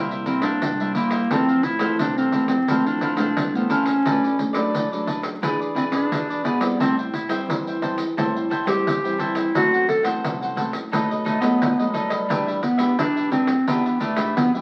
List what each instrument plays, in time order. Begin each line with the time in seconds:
Already playing: upright bass C2, nylon-string guitar C3 G3 A#3 E4, cavaquinho E5
0.11 cavaquinho A#4 C5 E5, pandeiro
0.26 clarinet C4, cavaquinho E4 A#4 C5 E5, pandeiro
0.42 upright bass G2, nylon-string guitar G3 A#3 E4, clarinet D4, cavaquinho A#4 C5 E5, pandeiro
0.62 upright bass C2, nylon-string guitar G2, pandeiro
0.80 nylon-string guitar G3 A#3 E4, cavaquinho A#4 C5 E5, pandeiro
0.95 clarinet A#3, cavaquinho E4 A#4 C5 E5, pandeiro
1.11 cavaquinho A#4 C5 E5, pandeiro
1.30 upright bass F2, nylon-string guitar F2 E3 A3 C4, clarinet C4, cavaquinho E4 A4 C5 F5, pandeiro
1.49 cavaquinho A4 C5 F5, pandeiro
1.63 clarinet E4, muted cavaquinho stroke, pandeiro
1.79 nylon-string guitar E3 A3 C4, cavaquinho A4 C5 F5, pandeiro
1.99 upright bass C2, nylon-string guitar C3, clarinet D4, pandeiro
2.18 clarinet C4, cavaquinho A4 C5 F5, pandeiro
2.32 nylon-string guitar E3 A3 C4, cavaquinho E4 A4 C5 F5, pandeiro
2.48 upright bass F2, clarinet C4, muted cavaquinho stroke, pandeiro
2.67 upright bass F2, nylon-string guitar F2 E3 A3 C4, cavaquinho E4 A4 C5 F5, pandeiro
2.86 clarinet D4, cavaquinho A4 C5 F5, pandeiro
3.01 cavaquinho E4 A4 C5 F5, pandeiro
3.16 upright bass C2, nylon-string guitar E3 A3 C4, clarinet D4, cavaquinho A4 C5 F5, pandeiro
3.37 upright bass C2, pandeiro
3.55 nylon-string guitar E3 A3 C4, clarinet B3, cavaquinho A4 C5 F5, pandeiro
3.69 clarinet C#4, cavaquinho E4 A4 C5 F5, pandeiro
3.85 cavaquinho A4 C5 F5, pandeiro
4.05 upright bass B1, nylon-string guitar B2 F#3 A3 D4, cavaquinho D4 A4 B4 D5, pandeiro
4.23 cavaquinho A4 B4 D5, pandeiro
4.38 nylon-string guitar F#3 A3 D4, muted cavaquinho stroke, pandeiro
4.53 nylon-string guitar F#3 A3 D4, cavaquinho A4 B4 D5, pandeiro
4.74 upright bass F#2, nylon-string guitar F#2, pandeiro
4.92 nylon-string guitar F#3 A3 D4, cavaquinho A4 B4 D5, pandeiro
5.06 cavaquinho D4 A4 B4 D5, pandeiro
5.22 upright bass B1, muted cavaquinho stroke, pandeiro
5.42 upright bass E2, nylon-string guitar E3 B3 D4 G#4, cavaquinho E4 G#4 B4 D5, pandeiro
5.60 cavaquinho G#4 B4 D5, pandeiro
5.75 clarinet C4, cavaquinho E4 G#4 B4 D5, pandeiro
5.91 upright bass B1, clarinet D4, cavaquinho G#4 B4 D5, pandeiro
6.11 upright bass E2, nylon-string guitar B2 B3 D4 G#4, pandeiro
6.30 cavaquinho G#4 B4 D5, pandeiro
6.44 clarinet B3, cavaquinho E4 G#4 B4 D5, pandeiro
6.60 nylon-string guitar G3 C4 E4, cavaquinho G#4 B4 D5, pandeiro
6.80 upright bass A1, nylon-string guitar A2, clarinet C4, cavaquinho A4 C5 E5 G5, pandeiro
6.98 cavaquinho C5 E5 G5, pandeiro
7.13 clarinet E4, muted cavaquinho stroke, pandeiro
7.28 nylon-string guitar G3 C4 E4, cavaquinho C5 E5 G5, pandeiro
7.48 upright bass E2, nylon-string guitar E3, pandeiro
7.67 cavaquinho C5 E5 G5, pandeiro
7.82 nylon-string guitar G3 C4 E4, cavaquinho A4 C5 E5 G5, pandeiro
7.97 upright bass A1, muted cavaquinho stroke, pandeiro
8.17 upright bass A1, nylon-string guitar A2 G3 C4 E4, cavaquinho A4 C5 E5 G5, pandeiro
8.35 cavaquinho C5 E5 G5, pandeiro
8.50 clarinet E4, cavaquinho A4 C5 E5 G5, pandeiro
8.65 upright bass E2, nylon-string guitar G3 C4 E4, clarinet G4, cavaquinho C5 E5 G5, pandeiro
8.86 upright bass A1, nylon-string guitar E3, pandeiro
9.04 nylon-string guitar G3 C4 E4, cavaquinho C5 E5 G5, pandeiro
9.18 clarinet E4, cavaquinho A4 C5 E5 G5, pandeiro
9.35 cavaquinho C5 E5 G5, pandeiro
9.54 upright bass F#1, nylon-string guitar F#2 E3 A3 C4, cavaquinho E4 A4 C5 F#5, clarinet F#4, pandeiro
9.73 cavaquinho A4 C5 F#5, pandeiro
9.87 clarinet A4, muted cavaquinho stroke, pandeiro
10.03 nylon-string guitar E3 A3 C4, cavaquinho A4 C5 F#5, pandeiro
10.24 upright bass C2, nylon-string guitar F#2, pandeiro
10.41 cavaquinho A4 C5 F#5, pandeiro
10.56 nylon-string guitar E3 A3 C4, cavaquinho E4 A4 C5 F#5, pandeiro
10.72 upright bass A1, muted cavaquinho stroke, pandeiro
10.92 upright bass B1, nylon-string guitar B2 F#3 A3 D#4, cavaquinho D#4 A4 B4 D#5, pandeiro
11.10 cavaquinho A4 B4 D#5, pandeiro
11.25 clarinet A3, cavaquinho D#4 A4 B4 D#5, pandeiro
11.40 upright bass F#2, nylon-string guitar F#3 A3 D#4, clarinet B3, cavaquinho A4 B4 D#5, pandeiro
11.61 upright bass B1, pandeiro
11.79 nylon-string guitar F#3 A3 D#4, cavaquinho A4 B4 D#5, pandeiro
11.89 clarinet G#3
11.93 clarinet G3, cavaquinho D#4 A4 B4 D#5, pandeiro
12.09 cavaquinho A4 B4 D#5, pandeiro
12.29 upright bass E2, nylon-string guitar E3 B3 D4 G4, cavaquinho D4 G4 B4 E5, pandeiro
12.47 cavaquinho G4 B4 E5, pandeiro
12.62 clarinet B3, muted cavaquinho stroke, pandeiro
12.78 nylon-string guitar B3 D4 G4, cavaquinho G4 B4 E5, pandeiro
12.99 upright bass B1, clarinet D4, pandeiro
13.16 cavaquinho G4 B4 E5, pandeiro
13.31 nylon-string guitar B3 D4 G4, clarinet C4, cavaquinho D4 G4 B4 E5, pandeiro
13.47 upright bass E2, muted cavaquinho stroke, pandeiro
13.67 upright bass E2, nylon-string guitar E3 B3 D4 G4, clarinet B3, cavaquinho D4 G4 B4 E5, pandeiro
13.85 cavaquinho G4 B4 E5, pandeiro
14.00 clarinet A3, cavaquinho D4 G4 B4 E5, pandeiro
14.16 upright bass B1, nylon-string guitar B3 D4 G4, cavaquinho G4 B4 E5, pandeiro
14.37 upright bass F2, nylon-string guitar B2, clarinet B3, pandeiro
14.54 nylon-string guitar B3 D4 G4, cavaquinho G4 B4 E5, pandeiro